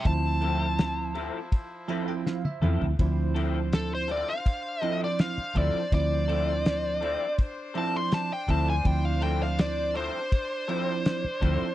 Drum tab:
RD |x-x-x-x-x-x-----|x-x-x-x-x-x-x-x-|x-x-x-x-x-x-x-x-|x-x-x-x-x-x-x-x-|
SD |----o-------o---|----o-------o---|----o-------o---|----o-------o---|
T1 |-------------o--|----------------|----------------|----------------|
T2 |--------------o-|----------------|----------------|----------------|
FT |---------------o|----------------|----------------|----------------|
BD |o-------o-------|o-------o-----o-|o-------o-----o-|o-------o-----o-|